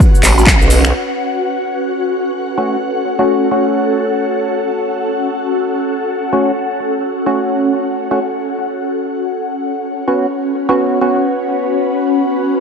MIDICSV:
0, 0, Header, 1, 5, 480
1, 0, Start_track
1, 0, Key_signature, 3, "minor"
1, 0, Tempo, 468750
1, 958, Time_signature, 4, 2, 24, 8
1, 12903, End_track
2, 0, Start_track
2, 0, Title_t, "Ambient pad"
2, 0, Program_c, 0, 92
2, 0, Note_on_c, 0, 61, 85
2, 0, Note_on_c, 0, 66, 87
2, 0, Note_on_c, 0, 71, 83
2, 0, Note_on_c, 0, 78, 92
2, 1311, Note_on_c, 0, 69, 72
2, 2843, Note_off_c, 0, 71, 0
2, 8625, Note_off_c, 0, 61, 0
2, 8638, Note_off_c, 0, 66, 0
2, 8638, Note_on_c, 0, 61, 80
2, 9236, Note_on_c, 0, 66, 82
2, 9743, Note_on_c, 0, 71, 92
2, 10021, Note_off_c, 0, 69, 0
2, 12903, Note_off_c, 0, 61, 0
2, 12903, Note_off_c, 0, 66, 0
2, 12903, Note_off_c, 0, 71, 0
2, 12903, Note_off_c, 0, 78, 0
2, 12903, End_track
3, 0, Start_track
3, 0, Title_t, "Synth stab"
3, 0, Program_c, 1, 62
3, 2638, Note_on_c, 1, 61, 65
3, 2639, Note_on_c, 1, 57, 70
3, 2639, Note_on_c, 1, 66, 82
3, 2830, Note_off_c, 1, 57, 0
3, 2830, Note_off_c, 1, 61, 0
3, 2830, Note_off_c, 1, 66, 0
3, 3266, Note_on_c, 1, 57, 88
3, 3266, Note_on_c, 1, 61, 78
3, 3266, Note_on_c, 1, 66, 95
3, 3576, Note_off_c, 1, 57, 0
3, 3576, Note_off_c, 1, 61, 0
3, 3576, Note_off_c, 1, 66, 0
3, 3598, Note_on_c, 1, 57, 77
3, 3598, Note_on_c, 1, 61, 70
3, 3598, Note_on_c, 1, 66, 82
3, 6456, Note_off_c, 1, 57, 0
3, 6456, Note_off_c, 1, 61, 0
3, 6456, Note_off_c, 1, 66, 0
3, 6478, Note_on_c, 1, 57, 74
3, 6478, Note_on_c, 1, 61, 71
3, 6478, Note_on_c, 1, 66, 84
3, 6670, Note_off_c, 1, 57, 0
3, 6670, Note_off_c, 1, 61, 0
3, 6670, Note_off_c, 1, 66, 0
3, 7439, Note_on_c, 1, 57, 73
3, 7439, Note_on_c, 1, 61, 72
3, 7439, Note_on_c, 1, 66, 85
3, 8277, Note_off_c, 1, 57, 0
3, 8277, Note_off_c, 1, 61, 0
3, 8277, Note_off_c, 1, 66, 0
3, 8306, Note_on_c, 1, 57, 72
3, 8306, Note_on_c, 1, 61, 65
3, 8306, Note_on_c, 1, 66, 77
3, 8391, Note_off_c, 1, 57, 0
3, 8391, Note_off_c, 1, 61, 0
3, 8391, Note_off_c, 1, 66, 0
3, 10319, Note_on_c, 1, 59, 74
3, 10319, Note_on_c, 1, 61, 69
3, 10319, Note_on_c, 1, 66, 83
3, 10510, Note_off_c, 1, 59, 0
3, 10510, Note_off_c, 1, 61, 0
3, 10510, Note_off_c, 1, 66, 0
3, 10946, Note_on_c, 1, 59, 90
3, 10946, Note_on_c, 1, 61, 83
3, 10946, Note_on_c, 1, 66, 99
3, 11256, Note_off_c, 1, 59, 0
3, 11256, Note_off_c, 1, 61, 0
3, 11256, Note_off_c, 1, 66, 0
3, 11278, Note_on_c, 1, 59, 77
3, 11278, Note_on_c, 1, 61, 73
3, 11279, Note_on_c, 1, 66, 89
3, 12903, Note_off_c, 1, 59, 0
3, 12903, Note_off_c, 1, 61, 0
3, 12903, Note_off_c, 1, 66, 0
3, 12903, End_track
4, 0, Start_track
4, 0, Title_t, "Wobble bass"
4, 0, Program_c, 2, 39
4, 238, Note_on_c, 2, 33, 98
4, 603, Note_off_c, 2, 33, 0
4, 626, Note_on_c, 2, 35, 98
4, 944, Note_off_c, 2, 35, 0
4, 12903, End_track
5, 0, Start_track
5, 0, Title_t, "Drums"
5, 0, Note_on_c, 9, 36, 123
5, 5, Note_on_c, 9, 69, 48
5, 101, Note_off_c, 9, 36, 0
5, 107, Note_off_c, 9, 69, 0
5, 152, Note_on_c, 9, 69, 32
5, 239, Note_on_c, 9, 46, 107
5, 240, Note_on_c, 9, 39, 66
5, 245, Note_off_c, 9, 69, 0
5, 245, Note_on_c, 9, 69, 85
5, 341, Note_off_c, 9, 46, 0
5, 342, Note_off_c, 9, 39, 0
5, 347, Note_off_c, 9, 69, 0
5, 392, Note_on_c, 9, 69, 37
5, 479, Note_on_c, 9, 36, 118
5, 480, Note_on_c, 9, 39, 127
5, 484, Note_off_c, 9, 69, 0
5, 484, Note_on_c, 9, 69, 49
5, 581, Note_off_c, 9, 36, 0
5, 582, Note_off_c, 9, 39, 0
5, 587, Note_off_c, 9, 69, 0
5, 632, Note_on_c, 9, 69, 33
5, 719, Note_on_c, 9, 46, 94
5, 725, Note_off_c, 9, 69, 0
5, 725, Note_on_c, 9, 69, 83
5, 821, Note_off_c, 9, 46, 0
5, 827, Note_off_c, 9, 69, 0
5, 866, Note_on_c, 9, 26, 94
5, 872, Note_on_c, 9, 69, 37
5, 968, Note_off_c, 9, 26, 0
5, 975, Note_off_c, 9, 69, 0
5, 12903, End_track
0, 0, End_of_file